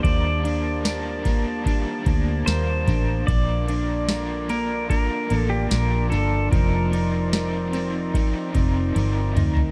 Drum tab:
RD |x-x-x-x-x-x-x-x-|x-x-x-x-x-x-x-x-|x-x-x-x-x-x-x-x-|
TB |----x-------x---|----x-------x---|----x-----------|
SD |----o-------o---|----o-------o---|----o-----------|
T1 |----------------|----------------|------------o---|
T2 |----------------|----------------|--------------o-|
FT |----------------|----------------|---------------o|
BD |o-----o-o-o---o-|o-------o-------|o-------o-o-----|